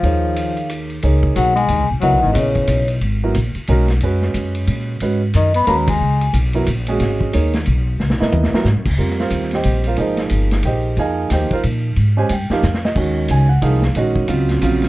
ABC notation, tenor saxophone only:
X:1
M:3/4
L:1/8
Q:"Swing" 1/4=181
K:Ebmix
V:1 name="Tenor saxophone" clef=bass
F,4 z2 | [K:C#dor] z2 F, G,2 z | F, D, C,3 z | z6 |
z6 | z2 D, B, A, G,- | G,2 z4 | z6 |
z6 | [K:Fm] z6 | z6 | z6 |
z6 | z6 | z6 |]